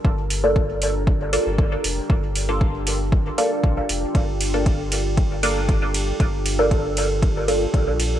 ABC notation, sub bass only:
X:1
M:4/4
L:1/16
Q:1/4=117
K:Gm
V:1 name="Sub bass" clef=bass
G,,,8- G,,,2 z G,,,2 z F,,, z | G,,,8- G,,, z3 B,,, z F,,, z | G,,,12- G,,,3 z | G,,,8- G,,,3 z B,,,3 z |]